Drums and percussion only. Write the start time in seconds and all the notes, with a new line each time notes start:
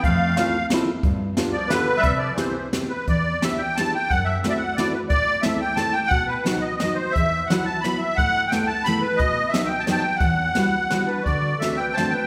0.04 kick, closed hi-hat
0.37 snare, closed hi-hat
0.70 snare, closed hi-hat
1.03 kick, closed hi-hat
1.37 snare, closed hi-hat
1.70 snare, closed hi-hat
2.03 kick, closed hi-hat
2.38 snare, closed hi-hat
2.73 snare, closed hi-hat
3.08 kick, closed hi-hat
3.42 snare, closed hi-hat
3.77 snare, closed hi-hat
4.10 kick, closed hi-hat
4.44 snare, closed hi-hat
4.78 snare, closed hi-hat
5.10 kick, closed hi-hat
5.43 snare, closed hi-hat
5.77 snare, closed hi-hat
6.11 kick, closed hi-hat
6.46 snare, closed hi-hat
6.80 snare, closed hi-hat
7.16 kick, closed hi-hat
7.50 snare, closed hi-hat
7.84 snare, closed hi-hat
8.18 kick, closed hi-hat
8.52 snare, closed hi-hat
8.86 snare, closed hi-hat
9.19 kick, closed hi-hat
9.54 snare, closed hi-hat
9.87 snare, closed hi-hat
10.20 kick, closed hi-hat
10.55 snare, closed hi-hat
10.90 snare, closed hi-hat
11.26 kick, closed hi-hat
11.62 snare, closed hi-hat
11.97 snare, closed hi-hat